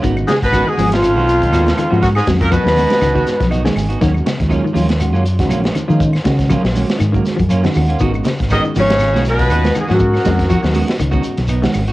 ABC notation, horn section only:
X:1
M:4/4
L:1/16
Q:"Swing 16ths" 1/4=120
K:G#dor
V:1 name="Horn section"
z2 G B2 G2 E8- E | F G2 A B8 z4 | z16 | z16 |
z4 d2 c4 B4 G F- | F6- F z8 z |]